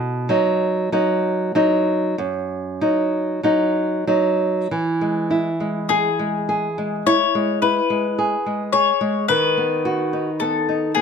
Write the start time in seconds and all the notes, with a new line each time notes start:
Already playing: B2
0.29 F#3 D#4
0.92 F#3 D#4
1.55 F#3 D#4
2.18 F#2
2.81 F#3 D#4
3.43 F#3 D#4
4.07 F#3 D#4
4.71 E3
5.01 G#3
5.31 E4
5.60 G#3
5.89 G#4
6.19 G#3
6.49 G#4
6.78 G#3
7.06 E4 C#5
7.35 G#3
7.62 E4 B4
7.90 G#3
8.19 G#4
8.46 G#3
8.73 G#4 C#5
9.01 G#3
9.28 D#3 B4
9.57 B3
9.85 F#4
10.13 D#4
10.40 B3 A4
10.69 D#4
10.95 B3 G#4